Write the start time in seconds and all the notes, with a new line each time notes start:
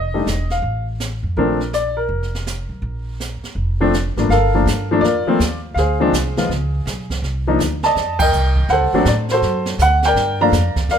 Already playing: F1 D#5
0.14 G3 A3 D4 D#4
0.26 E1, snare, hi-hat pedal
0.50 F5, snare
0.62 A1, brush sweep
1.00 snare, hi-hat pedal
1.23 F2
1.36 A#1 F3 A3 C4 D4 A#4, brush sweep
1.60 snare
1.73 D5, snare, hi-hat pedal
1.97 A#4
2.09 F1, brush sweep
2.23 snare
2.35 snare
2.47 snare, hi-hat pedal
2.69 B1
2.82 A#1, brush sweep
3.20 snare, hi-hat pedal
3.43 muted upright bass stroke, snare
3.55 F1, brush sweep
3.81 F3 A3 C4 D4
3.93 snare, hi-hat pedal
4.16 G#1 G2 F3 A3 A#3 D4, snare
4.29 G1 A4 A#4 F5, brush sweep, snare
4.54 F3 A3 A#3 D4
4.66 G2, snare, hi-hat pedal
4.91 F3 A3 A#3 D4
5.01 F2 F4 A#4 D5, brush sweep, snare
5.26 F3 A3 A#3 C4, muted upright bass stroke
5.39 D#2, snare, hi-hat pedal
5.74 D2 C5 F5, brush sweep, snare
5.79 G#4
6.00 F3 G#3 C4 D4
6.12 C2, snare, hi-hat pedal
6.37 F3 G#3 B3 F4, snare
6.49 C#2, brush sweep, snare
6.86 B1, snare, hi-hat pedal
7.10 kick, snare
7.22 C2, brush sweep, snare
7.47 F3 A#3 D4 D#4
7.59 D2, snare, hi-hat pedal
7.83 D5 D#5 A5, snare
7.96 F2, brush sweep, snare
8.19 A#4 D#5 G5, kick, crash
8.32 C2, hi-hat pedal
8.56 kick
8.69 D2 A4 C5 F#5, brush sweep, snare
8.81 C2
8.93 A1 F#3 A3 C4 D4
9.05 A2 D5, snare, hi-hat pedal
9.29 C5, snare
9.33 F#4 A4
9.42 F#2, brush sweep, snare
9.66 snare
9.78 D2 F#5, snare, hi-hat pedal
10.03 G5, snare
10.07 A#4 D5
10.15 G2, brush sweep, snare
10.41 F3 A3 A#3 D4 D5 F5 A#5
10.52 F2, snare, hi-hat pedal
10.76 muted upright bass stroke, kick, snare
10.88 D#2 D5 F5, brush sweep, snare
10.92 A#4